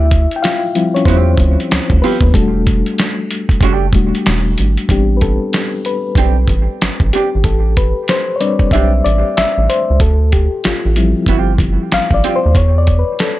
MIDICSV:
0, 0, Header, 1, 5, 480
1, 0, Start_track
1, 0, Key_signature, 0, "minor"
1, 0, Tempo, 638298
1, 1757, Time_signature, 4, 2, 24, 8
1, 10074, End_track
2, 0, Start_track
2, 0, Title_t, "Reed electric piano"
2, 0, Program_c, 0, 4
2, 0, Control_c, 0, 64, 127
2, 0, Note_on_c, 0, 64, 72
2, 0, Note_on_c, 0, 76, 95
2, 253, Note_off_c, 0, 64, 0
2, 272, Note_on_c, 0, 79, 72
2, 290, Note_off_c, 0, 76, 0
2, 314, Note_off_c, 0, 79, 0
2, 320, Note_on_c, 0, 77, 94
2, 331, Note_on_c, 0, 65, 69
2, 564, Note_on_c, 0, 53, 57
2, 566, Note_on_c, 0, 55, 50
2, 568, Note_on_c, 0, 60, 54
2, 572, Note_on_c, 0, 64, 64
2, 683, Note_off_c, 0, 77, 0
2, 689, Note_off_c, 0, 65, 0
2, 710, Note_on_c, 0, 73, 87
2, 724, Note_on_c, 0, 61, 70
2, 792, Note_off_c, 0, 73, 0
2, 795, Note_on_c, 0, 72, 89
2, 800, Note_off_c, 0, 61, 0
2, 802, Note_off_c, 0, 60, 0
2, 811, Note_on_c, 0, 60, 63
2, 904, Note_off_c, 0, 53, 0
2, 905, Note_off_c, 0, 55, 0
2, 908, Note_off_c, 0, 64, 0
2, 1494, Note_off_c, 0, 60, 0
2, 1519, Note_on_c, 0, 71, 90
2, 1533, Note_on_c, 0, 59, 67
2, 1538, Note_off_c, 0, 72, 0
2, 1742, Note_off_c, 0, 71, 0
2, 1749, Note_off_c, 0, 59, 0
2, 1764, Note_on_c, 0, 55, 57
2, 1764, Note_on_c, 0, 69, 76
2, 1767, Control_c, 0, 64, 0
2, 1767, Note_on_c, 0, 57, 63
2, 1769, Note_on_c, 0, 62, 53
2, 1774, Note_on_c, 0, 66, 59
2, 1889, Control_c, 0, 64, 127
2, 2451, Note_off_c, 0, 55, 0
2, 2453, Note_off_c, 0, 62, 0
2, 2456, Note_off_c, 0, 66, 0
2, 2959, Note_off_c, 0, 57, 0
2, 2965, Note_on_c, 0, 55, 50
2, 2968, Note_on_c, 0, 57, 46
2, 2973, Note_on_c, 0, 62, 44
2, 2973, Note_on_c, 0, 66, 54
2, 3171, Note_off_c, 0, 69, 0
2, 3178, Note_off_c, 0, 55, 0
2, 3179, Note_off_c, 0, 57, 0
2, 3182, Note_off_c, 0, 62, 0
2, 3182, Note_off_c, 0, 66, 0
2, 3682, Note_on_c, 0, 55, 49
2, 3684, Note_on_c, 0, 59, 42
2, 3686, Note_on_c, 0, 60, 46
2, 3688, Note_on_c, 0, 62, 55
2, 3689, Control_c, 0, 64, 0
2, 3695, Note_on_c, 0, 67, 73
2, 3796, Control_c, 0, 64, 127
2, 3874, Note_off_c, 0, 67, 0
2, 3887, Note_on_c, 0, 71, 58
2, 3922, Note_off_c, 0, 71, 0
2, 3928, Note_on_c, 0, 69, 78
2, 4023, Note_off_c, 0, 55, 0
2, 4024, Note_off_c, 0, 59, 0
2, 4025, Note_off_c, 0, 60, 0
2, 4027, Note_off_c, 0, 62, 0
2, 4407, Note_on_c, 0, 71, 84
2, 4417, Note_off_c, 0, 69, 0
2, 4626, Note_off_c, 0, 71, 0
2, 5364, Note_on_c, 0, 67, 83
2, 5600, Note_on_c, 0, 69, 77
2, 5608, Note_off_c, 0, 67, 0
2, 5844, Note_on_c, 0, 71, 81
2, 5846, Note_off_c, 0, 69, 0
2, 6086, Note_on_c, 0, 72, 84
2, 6088, Note_off_c, 0, 71, 0
2, 6269, Note_off_c, 0, 72, 0
2, 6286, Note_on_c, 0, 73, 68
2, 6318, Note_on_c, 0, 71, 51
2, 6319, Note_on_c, 0, 55, 54
2, 6321, Note_off_c, 0, 73, 0
2, 6322, Note_on_c, 0, 60, 47
2, 6323, Note_on_c, 0, 74, 86
2, 6329, Note_on_c, 0, 62, 59
2, 6544, Note_off_c, 0, 74, 0
2, 6562, Note_on_c, 0, 76, 93
2, 6802, Note_on_c, 0, 74, 92
2, 6807, Note_off_c, 0, 76, 0
2, 7047, Note_off_c, 0, 74, 0
2, 7048, Note_on_c, 0, 76, 96
2, 7266, Note_off_c, 0, 76, 0
2, 7291, Note_on_c, 0, 72, 91
2, 7488, Note_off_c, 0, 55, 0
2, 7488, Note_off_c, 0, 71, 0
2, 7490, Note_off_c, 0, 60, 0
2, 7493, Note_off_c, 0, 62, 0
2, 7508, Note_off_c, 0, 72, 0
2, 7528, Control_c, 0, 64, 0
2, 7529, Note_on_c, 0, 69, 85
2, 7657, Control_c, 0, 64, 127
2, 7767, Note_on_c, 0, 67, 73
2, 7770, Note_off_c, 0, 69, 0
2, 8006, Note_on_c, 0, 65, 65
2, 8009, Note_off_c, 0, 67, 0
2, 8244, Note_on_c, 0, 53, 49
2, 8247, Note_on_c, 0, 55, 50
2, 8251, Note_on_c, 0, 60, 47
2, 8252, Note_on_c, 0, 64, 58
2, 8452, Note_off_c, 0, 65, 0
2, 8931, Note_off_c, 0, 53, 0
2, 8932, Note_off_c, 0, 55, 0
2, 8935, Note_off_c, 0, 60, 0
2, 8935, Note_off_c, 0, 64, 0
2, 8977, Note_on_c, 0, 77, 101
2, 9117, Note_off_c, 0, 77, 0
2, 9130, Note_on_c, 0, 74, 85
2, 9289, Note_off_c, 0, 74, 0
2, 9293, Note_on_c, 0, 72, 92
2, 9446, Control_c, 0, 64, 0
2, 9450, Note_off_c, 0, 72, 0
2, 9453, Note_on_c, 0, 73, 87
2, 9564, Control_c, 0, 64, 127
2, 9595, Note_off_c, 0, 73, 0
2, 9612, Note_on_c, 0, 74, 89
2, 9681, Note_off_c, 0, 74, 0
2, 9768, Note_on_c, 0, 71, 85
2, 9912, Note_off_c, 0, 71, 0
2, 9926, Note_on_c, 0, 69, 78
2, 9996, Note_off_c, 0, 69, 0
2, 10074, End_track
3, 0, Start_track
3, 0, Title_t, "Hollow-body jazz guitar"
3, 0, Program_c, 1, 26
3, 808, Note_on_c, 1, 60, 89
3, 812, Note_on_c, 1, 65, 88
3, 818, Note_on_c, 1, 67, 101
3, 977, Note_off_c, 1, 60, 0
3, 979, Note_off_c, 1, 65, 0
3, 982, Note_off_c, 1, 67, 0
3, 1533, Note_on_c, 1, 60, 54
3, 1534, Note_on_c, 1, 65, 63
3, 1539, Note_on_c, 1, 67, 66
3, 1633, Note_off_c, 1, 60, 0
3, 1633, Note_off_c, 1, 65, 0
3, 1635, Note_off_c, 1, 67, 0
3, 2728, Note_on_c, 1, 57, 82
3, 2734, Note_on_c, 1, 62, 88
3, 2739, Note_on_c, 1, 67, 104
3, 2897, Note_off_c, 1, 57, 0
3, 2900, Note_off_c, 1, 62, 0
3, 2902, Note_off_c, 1, 67, 0
3, 4647, Note_on_c, 1, 60, 79
3, 4655, Note_on_c, 1, 62, 74
3, 4656, Note_on_c, 1, 67, 77
3, 4779, Note_off_c, 1, 60, 0
3, 4783, Note_off_c, 1, 62, 0
3, 4784, Note_off_c, 1, 67, 0
3, 5376, Note_on_c, 1, 60, 49
3, 5382, Note_on_c, 1, 62, 61
3, 5383, Note_on_c, 1, 67, 61
3, 5474, Note_off_c, 1, 60, 0
3, 5477, Note_off_c, 1, 62, 0
3, 5477, Note_off_c, 1, 67, 0
3, 6575, Note_on_c, 1, 60, 64
3, 6580, Note_on_c, 1, 62, 71
3, 6581, Note_on_c, 1, 67, 74
3, 6703, Note_off_c, 1, 60, 0
3, 6706, Note_off_c, 1, 62, 0
3, 6706, Note_off_c, 1, 67, 0
3, 8487, Note_on_c, 1, 60, 79
3, 8494, Note_on_c, 1, 65, 76
3, 8495, Note_on_c, 1, 67, 88
3, 8656, Note_off_c, 1, 60, 0
3, 8660, Note_off_c, 1, 65, 0
3, 8661, Note_off_c, 1, 67, 0
3, 9207, Note_on_c, 1, 60, 61
3, 9213, Note_on_c, 1, 65, 61
3, 9214, Note_on_c, 1, 67, 65
3, 9309, Note_off_c, 1, 60, 0
3, 9312, Note_off_c, 1, 65, 0
3, 9313, Note_off_c, 1, 67, 0
3, 10074, End_track
4, 0, Start_track
4, 0, Title_t, "Analog synth bass"
4, 0, Program_c, 2, 38
4, 0, Note_on_c, 2, 38, 95
4, 203, Note_off_c, 2, 38, 0
4, 800, Note_on_c, 2, 40, 99
4, 1019, Note_off_c, 2, 40, 0
4, 1042, Note_on_c, 2, 38, 91
4, 1180, Note_off_c, 2, 38, 0
4, 1302, Note_on_c, 2, 38, 45
4, 1356, Note_off_c, 2, 38, 0
4, 1437, Note_on_c, 2, 38, 92
4, 1515, Note_off_c, 2, 38, 0
4, 1668, Note_on_c, 2, 39, 91
4, 1750, Note_off_c, 2, 39, 0
4, 1768, Note_on_c, 2, 28, 113
4, 2125, Note_off_c, 2, 28, 0
4, 2719, Note_on_c, 2, 30, 105
4, 2939, Note_off_c, 2, 30, 0
4, 2961, Note_on_c, 2, 28, 102
4, 3099, Note_off_c, 2, 28, 0
4, 3215, Note_on_c, 2, 28, 96
4, 3428, Note_off_c, 2, 28, 0
4, 3456, Note_on_c, 2, 32, 83
4, 3587, Note_off_c, 2, 32, 0
4, 3686, Note_on_c, 2, 33, 95
4, 4044, Note_off_c, 2, 33, 0
4, 4634, Note_on_c, 2, 35, 94
4, 4857, Note_off_c, 2, 35, 0
4, 4879, Note_on_c, 2, 33, 88
4, 5018, Note_off_c, 2, 33, 0
4, 5137, Note_on_c, 2, 33, 43
4, 5193, Note_off_c, 2, 33, 0
4, 5270, Note_on_c, 2, 33, 86
4, 5351, Note_off_c, 2, 33, 0
4, 5529, Note_on_c, 2, 32, 83
4, 5597, Note_off_c, 2, 32, 0
4, 5602, Note_on_c, 2, 33, 99
4, 5961, Note_off_c, 2, 33, 0
4, 6560, Note_on_c, 2, 35, 88
4, 6779, Note_off_c, 2, 35, 0
4, 6812, Note_on_c, 2, 33, 93
4, 6945, Note_off_c, 2, 33, 0
4, 7050, Note_on_c, 2, 33, 44
4, 7108, Note_off_c, 2, 33, 0
4, 7203, Note_on_c, 2, 33, 88
4, 7278, Note_off_c, 2, 33, 0
4, 7447, Note_on_c, 2, 37, 86
4, 7520, Note_off_c, 2, 37, 0
4, 7527, Note_on_c, 2, 38, 96
4, 7884, Note_off_c, 2, 38, 0
4, 8015, Note_on_c, 2, 33, 48
4, 8071, Note_off_c, 2, 33, 0
4, 8164, Note_on_c, 2, 33, 85
4, 8378, Note_off_c, 2, 33, 0
4, 8480, Note_on_c, 2, 31, 95
4, 8700, Note_off_c, 2, 31, 0
4, 8717, Note_on_c, 2, 31, 87
4, 8857, Note_off_c, 2, 31, 0
4, 8972, Note_on_c, 2, 33, 47
4, 9029, Note_off_c, 2, 33, 0
4, 9113, Note_on_c, 2, 33, 80
4, 9192, Note_off_c, 2, 33, 0
4, 9367, Note_on_c, 2, 39, 90
4, 9437, Note_off_c, 2, 39, 0
4, 9442, Note_on_c, 2, 40, 99
4, 9801, Note_off_c, 2, 40, 0
4, 10074, End_track
5, 0, Start_track
5, 0, Title_t, "Drums"
5, 85, Note_on_c, 9, 42, 65
5, 86, Note_on_c, 9, 36, 92
5, 160, Note_off_c, 9, 42, 0
5, 161, Note_off_c, 9, 36, 0
5, 236, Note_on_c, 9, 42, 35
5, 311, Note_off_c, 9, 42, 0
5, 330, Note_on_c, 9, 42, 81
5, 338, Note_on_c, 9, 38, 107
5, 405, Note_off_c, 9, 42, 0
5, 414, Note_off_c, 9, 38, 0
5, 566, Note_on_c, 9, 42, 62
5, 641, Note_off_c, 9, 42, 0
5, 724, Note_on_c, 9, 42, 33
5, 793, Note_on_c, 9, 36, 102
5, 799, Note_off_c, 9, 42, 0
5, 813, Note_on_c, 9, 42, 85
5, 868, Note_off_c, 9, 36, 0
5, 889, Note_off_c, 9, 42, 0
5, 1034, Note_on_c, 9, 36, 96
5, 1051, Note_on_c, 9, 42, 62
5, 1109, Note_off_c, 9, 36, 0
5, 1126, Note_off_c, 9, 42, 0
5, 1203, Note_on_c, 9, 42, 35
5, 1278, Note_off_c, 9, 42, 0
5, 1289, Note_on_c, 9, 42, 77
5, 1293, Note_on_c, 9, 38, 112
5, 1364, Note_off_c, 9, 42, 0
5, 1368, Note_off_c, 9, 38, 0
5, 1427, Note_on_c, 9, 36, 87
5, 1503, Note_off_c, 9, 36, 0
5, 1532, Note_on_c, 9, 46, 55
5, 1607, Note_off_c, 9, 46, 0
5, 1659, Note_on_c, 9, 36, 96
5, 1734, Note_off_c, 9, 36, 0
5, 1759, Note_on_c, 9, 36, 120
5, 1767, Note_on_c, 9, 42, 84
5, 1834, Note_off_c, 9, 36, 0
5, 1842, Note_off_c, 9, 42, 0
5, 2006, Note_on_c, 9, 42, 65
5, 2007, Note_on_c, 9, 36, 93
5, 2081, Note_off_c, 9, 42, 0
5, 2082, Note_off_c, 9, 36, 0
5, 2153, Note_on_c, 9, 42, 35
5, 2228, Note_off_c, 9, 42, 0
5, 2244, Note_on_c, 9, 42, 75
5, 2252, Note_on_c, 9, 38, 111
5, 2319, Note_off_c, 9, 42, 0
5, 2328, Note_off_c, 9, 38, 0
5, 2486, Note_on_c, 9, 42, 67
5, 2561, Note_off_c, 9, 42, 0
5, 2624, Note_on_c, 9, 36, 83
5, 2641, Note_on_c, 9, 42, 34
5, 2700, Note_off_c, 9, 36, 0
5, 2712, Note_on_c, 9, 36, 100
5, 2716, Note_off_c, 9, 42, 0
5, 2727, Note_on_c, 9, 42, 83
5, 2787, Note_off_c, 9, 36, 0
5, 2802, Note_off_c, 9, 42, 0
5, 2953, Note_on_c, 9, 36, 95
5, 2967, Note_on_c, 9, 42, 60
5, 3028, Note_off_c, 9, 36, 0
5, 3042, Note_off_c, 9, 42, 0
5, 3119, Note_on_c, 9, 42, 36
5, 3195, Note_off_c, 9, 42, 0
5, 3204, Note_on_c, 9, 42, 73
5, 3208, Note_on_c, 9, 38, 111
5, 3279, Note_off_c, 9, 42, 0
5, 3283, Note_off_c, 9, 38, 0
5, 3442, Note_on_c, 9, 42, 77
5, 3517, Note_off_c, 9, 42, 0
5, 3590, Note_on_c, 9, 42, 36
5, 3665, Note_off_c, 9, 42, 0
5, 3677, Note_on_c, 9, 36, 98
5, 3685, Note_on_c, 9, 42, 72
5, 3752, Note_off_c, 9, 36, 0
5, 3760, Note_off_c, 9, 42, 0
5, 3920, Note_on_c, 9, 42, 61
5, 3924, Note_on_c, 9, 36, 81
5, 3995, Note_off_c, 9, 42, 0
5, 3999, Note_off_c, 9, 36, 0
5, 4159, Note_on_c, 9, 42, 69
5, 4168, Note_on_c, 9, 38, 101
5, 4234, Note_off_c, 9, 42, 0
5, 4243, Note_off_c, 9, 38, 0
5, 4398, Note_on_c, 9, 42, 57
5, 4473, Note_off_c, 9, 42, 0
5, 4627, Note_on_c, 9, 36, 93
5, 4643, Note_on_c, 9, 42, 78
5, 4703, Note_off_c, 9, 36, 0
5, 4718, Note_off_c, 9, 42, 0
5, 4870, Note_on_c, 9, 36, 85
5, 4883, Note_on_c, 9, 42, 56
5, 4945, Note_off_c, 9, 36, 0
5, 4958, Note_off_c, 9, 42, 0
5, 5125, Note_on_c, 9, 42, 63
5, 5129, Note_on_c, 9, 38, 100
5, 5200, Note_off_c, 9, 42, 0
5, 5204, Note_off_c, 9, 38, 0
5, 5264, Note_on_c, 9, 36, 86
5, 5339, Note_off_c, 9, 36, 0
5, 5363, Note_on_c, 9, 42, 71
5, 5438, Note_off_c, 9, 42, 0
5, 5595, Note_on_c, 9, 36, 107
5, 5598, Note_on_c, 9, 42, 76
5, 5670, Note_off_c, 9, 36, 0
5, 5673, Note_off_c, 9, 42, 0
5, 5841, Note_on_c, 9, 42, 63
5, 5843, Note_on_c, 9, 36, 82
5, 5917, Note_off_c, 9, 42, 0
5, 5918, Note_off_c, 9, 36, 0
5, 6076, Note_on_c, 9, 42, 71
5, 6084, Note_on_c, 9, 38, 94
5, 6151, Note_off_c, 9, 42, 0
5, 6159, Note_off_c, 9, 38, 0
5, 6321, Note_on_c, 9, 42, 54
5, 6396, Note_off_c, 9, 42, 0
5, 6462, Note_on_c, 9, 36, 80
5, 6537, Note_off_c, 9, 36, 0
5, 6551, Note_on_c, 9, 36, 92
5, 6568, Note_on_c, 9, 42, 75
5, 6626, Note_off_c, 9, 36, 0
5, 6643, Note_off_c, 9, 42, 0
5, 6811, Note_on_c, 9, 42, 55
5, 6887, Note_off_c, 9, 42, 0
5, 7048, Note_on_c, 9, 42, 68
5, 7052, Note_on_c, 9, 38, 101
5, 7124, Note_off_c, 9, 42, 0
5, 7127, Note_off_c, 9, 38, 0
5, 7292, Note_on_c, 9, 42, 69
5, 7368, Note_off_c, 9, 42, 0
5, 7520, Note_on_c, 9, 36, 105
5, 7525, Note_on_c, 9, 42, 73
5, 7595, Note_off_c, 9, 36, 0
5, 7600, Note_off_c, 9, 42, 0
5, 7764, Note_on_c, 9, 42, 64
5, 7767, Note_on_c, 9, 36, 83
5, 7839, Note_off_c, 9, 42, 0
5, 7842, Note_off_c, 9, 36, 0
5, 8001, Note_on_c, 9, 42, 71
5, 8009, Note_on_c, 9, 38, 104
5, 8076, Note_off_c, 9, 42, 0
5, 8085, Note_off_c, 9, 38, 0
5, 8243, Note_on_c, 9, 42, 58
5, 8318, Note_off_c, 9, 42, 0
5, 8471, Note_on_c, 9, 36, 90
5, 8482, Note_on_c, 9, 42, 79
5, 8546, Note_off_c, 9, 36, 0
5, 8557, Note_off_c, 9, 42, 0
5, 8712, Note_on_c, 9, 36, 89
5, 8723, Note_on_c, 9, 42, 51
5, 8787, Note_off_c, 9, 36, 0
5, 8798, Note_off_c, 9, 42, 0
5, 8961, Note_on_c, 9, 42, 67
5, 8965, Note_on_c, 9, 38, 104
5, 9037, Note_off_c, 9, 42, 0
5, 9040, Note_off_c, 9, 38, 0
5, 9104, Note_on_c, 9, 36, 83
5, 9179, Note_off_c, 9, 36, 0
5, 9204, Note_on_c, 9, 42, 72
5, 9279, Note_off_c, 9, 42, 0
5, 9436, Note_on_c, 9, 36, 104
5, 9441, Note_on_c, 9, 42, 76
5, 9511, Note_off_c, 9, 36, 0
5, 9516, Note_off_c, 9, 42, 0
5, 9678, Note_on_c, 9, 42, 60
5, 9682, Note_on_c, 9, 36, 83
5, 9754, Note_off_c, 9, 42, 0
5, 9757, Note_off_c, 9, 36, 0
5, 9919, Note_on_c, 9, 42, 67
5, 9927, Note_on_c, 9, 38, 98
5, 9994, Note_off_c, 9, 42, 0
5, 10002, Note_off_c, 9, 38, 0
5, 10074, End_track
0, 0, End_of_file